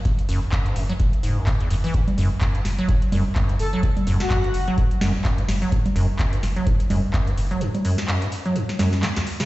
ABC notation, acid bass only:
X:1
M:4/4
L:1/16
Q:"Swing 16ths" 1/4=127
K:F#m
V:1 name="Acid bass" clef=bass
z2 F,, z F,, G,, F,, F, z2 G,, F,, F, E,, F,, E, | F,, z F,, z F,, G,, z F, F,, z F,, z F,, G,, z F, | F,, z F,, z F,, G,, z F, F,, z F,, z F,, G,, z F, | F,, z F,, z F,, G,, z F, F,, z F,, z F,, G,, z F, |
F,, z F,, z F,, G,, z F, F,, z F,,2 A, E,, z C, |]